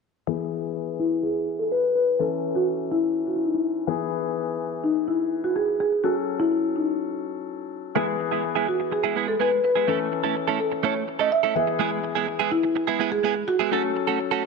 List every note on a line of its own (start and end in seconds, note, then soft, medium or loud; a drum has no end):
0.27 2.16 E3 medium
0.27 2.16 B3 medium
0.27 2.16 G#4 medium
0.99 1.24 E4 medium
1.23 1.61 G#4 medium
1.59 1.65 A4 medium
1.72 1.94 B4 loud
1.95 2.20 B4 medium
2.19 3.84 E3 medium
2.19 3.84 C#4 medium
2.19 2.57 A4 loud
2.19 3.85 A4 medium
2.55 2.89 F#4 medium
2.92 3.25 E4 medium
3.27 3.36 F#4 medium
3.36 3.45 E4 medium
3.46 3.55 D#4 medium
3.54 3.64 E4 medium
3.87 5.76 E3 medium
3.87 5.76 B3 medium
3.87 5.76 G#4 medium
4.84 5.08 D#4 medium
5.08 5.45 E4 medium
5.44 5.56 F#4 medium
5.56 5.79 G#4 loud
5.80 6.05 G#4 medium
6.03 7.92 F#3 medium
6.03 7.92 C#4 medium
6.03 6.41 F#4 loud
6.03 7.92 A4 medium
6.40 6.77 E4 medium
6.76 7.44 D#4 medium
7.95 9.84 E3 medium
7.95 8.15 G#3 medium
7.95 9.84 B3 medium
7.95 8.08 B3 medium
7.95 8.07 E4 medium
7.95 9.84 G#4 medium
7.95 8.06 G#4 medium
8.08 muted clean electric guitar stroke soft
8.20 muted clean electric guitar stroke soft
8.31 8.42 G#3 soft
8.31 8.43 B3 medium
8.31 8.43 E4 medium
8.31 8.44 G#4 medium
8.44 muted clean electric guitar stroke soft
8.55 8.66 G#3 medium
8.55 8.67 B3 medium
8.55 8.67 E4 medium
8.55 8.68 G#4 medium
8.68 8.93 F#4 medium
8.68 muted clean electric guitar stroke soft
8.80 muted clean electric guitar stroke soft
8.92 9.29 G#4 medium
8.92 muted clean electric guitar stroke soft
9.04 9.14 G#3 medium
9.04 9.15 B3 medium
9.04 9.16 E4 medium
9.04 9.16 G#4 medium
9.16 9.35 G#3 medium
9.16 9.28 B3 medium
9.16 9.27 E4 medium
9.16 9.27 G#4 medium
9.28 9.33 A4 medium
9.28 muted clean electric guitar stroke soft
9.39 9.59 G#3 medium
9.39 9.52 B3 medium
9.39 9.51 E4 medium
9.39 9.50 G#4 medium
9.39 9.63 B4 loud
9.52 muted clean electric guitar stroke soft
9.64 9.86 B4 medium
9.64 muted clean electric guitar stroke soft
9.75 9.87 G#3 soft
9.75 9.88 B3 medium
9.75 9.87 E4 medium
9.75 9.89 G#4 medium
9.87 11.52 E3 medium
9.87 10.07 A3 medium
9.87 11.52 C#4 medium
9.87 10.00 C#4 medium
9.87 9.99 E4 medium
9.87 11.53 A4 medium
9.87 9.99 A4 medium
10.00 muted clean electric guitar stroke soft
10.12 muted clean electric guitar stroke soft
10.24 10.35 A3 soft
10.24 10.35 C#4 soft
10.24 10.35 E4 medium
10.24 10.36 A4 medium
10.36 muted clean electric guitar stroke soft
10.48 10.59 A3 medium
10.48 10.59 C#4 medium
10.48 10.59 E4 medium
10.48 10.60 A4 medium
10.60 10.85 A4 medium
10.60 muted clean electric guitar stroke soft
10.72 muted clean electric guitar stroke soft
10.83 11.03 A3 medium
10.83 10.95 C#4 medium
10.83 10.95 E4 medium
10.83 10.94 A4 medium
10.83 11.21 C#5 medium
10.95 muted clean electric guitar stroke medium
11.08 muted clean electric guitar stroke soft
11.19 11.30 A3 soft
11.19 11.31 C#4 soft
11.19 11.31 E4 medium
11.19 11.31 A4 medium
11.19 11.25 D#5 medium
11.31 11.55 E5 loud
11.31 muted clean electric guitar stroke soft
11.43 11.55 A3 medium
11.43 11.56 C#4 medium
11.43 11.55 E4 medium
11.43 11.56 A4 medium
11.55 13.44 E3 medium
11.55 13.44 B3 medium
11.55 13.44 G#4 medium
11.55 11.78 E5 medium
11.67 muted clean electric guitar stroke soft
11.79 11.99 G#3 medium
11.79 11.91 B3 medium
11.79 11.91 E4 medium
11.79 11.90 G#4 medium
11.91 muted clean electric guitar stroke soft
12.03 muted clean electric guitar stroke soft
12.15 12.26 G#3 soft
12.15 12.27 B3 soft
12.15 12.27 E4 soft
12.15 12.27 G#4 medium
12.27 muted clean electric guitar stroke soft
12.39 12.50 G#3 medium
12.39 12.51 B3 medium
12.39 12.51 E4 medium
12.39 12.51 G#4 medium
12.52 13.13 E4 medium
12.52 muted clean electric guitar stroke soft
12.63 muted clean electric guitar stroke soft
12.75 muted clean electric guitar stroke soft
12.87 12.98 G#3 soft
12.87 12.99 B3 medium
12.87 12.99 E4 medium
12.87 13.00 G#4 medium
12.99 13.19 G#3 medium
12.99 13.11 B3 medium
12.99 13.11 E4 medium
12.99 13.10 G#4 medium
13.11 13.49 G#4 loud
13.11 muted clean electric guitar stroke soft
13.23 13.43 G#3 medium
13.23 13.35 B3 medium
13.23 13.35 E4 medium
13.23 13.34 G#4 medium
13.36 muted clean electric guitar stroke soft
13.48 14.46 F#4 medium
13.48 muted clean electric guitar stroke soft
13.59 13.71 G#3 soft
13.59 13.72 B3 medium
13.59 13.72 E4 medium
13.59 13.73 G#4 medium
13.71 14.46 F#3 medium
13.71 13.91 A3 medium
13.71 14.46 C#4 medium
13.71 13.84 C#4 medium
13.71 13.83 F#4 medium
13.71 14.46 A4 medium
13.71 13.82 A4 medium
13.84 muted clean electric guitar stroke soft
13.96 muted clean electric guitar stroke soft
14.07 14.18 A3 soft
14.07 14.19 C#4 medium
14.07 14.19 F#4 medium
14.07 14.19 A4 medium
14.20 muted clean electric guitar stroke soft
14.31 14.43 A3 medium
14.31 14.43 C#4 medium
14.31 14.43 F#4 medium
14.31 14.44 A4 medium